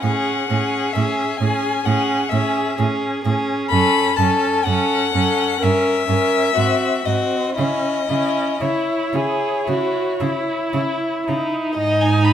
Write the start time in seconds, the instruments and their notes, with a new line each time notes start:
0.03 cello A2, viola C#4, violin G#4 F#5
0.49 cello A2, viola C#4, violin G#4
0.93 cello A2, viola C#4, violin G#4 E5
1.37 cello A2, viola C#4, violin G#5
1.41 violin G#4
1.85 cello A2, viola C#4, violin G#4 F#5
2.29 cello A2, viola C#4, violin G#4 E5
2.78 cello A2, viola C#4, violin G#4
3.24 cello A2, viola C#4, violin G#4
3.69 cello F#2, viola C#4, violin A4 B5
4.16 cello F#2, viola C#4, violin A4 A5
4.65 cello F#2, viola C#4, violin A4 F#5
5.14 cello F#2, viola C#4, violin A4
5.61 cello G2, viola C#4, violin A#4 E5
6.08 cello G2, viola C#4, violin A#4
6.55 cello G#2, viola C4, violin F#4
7.04 cello G#2, viola C4, violin F#4 D#5
7.55 cello C#3, viola C#4, violin E4 D#5
8.07 cello C#3, viola C#4, violin E4
8.60 cello C#3, violin E4 C#5, viola E4
9.12 cello C#3, violin E4, viola G#4
9.66 cello C#3, violin E4, viola F#4
10.19 cello C#3, violin E4, viola E4
10.73 cello C#3, violin E4
11.26 cello C#3, viola D#4, violin E4
11.75 cello G#2, viola D#4, violin D#5 G#5
12.01 violin G#5
12.24 violin B5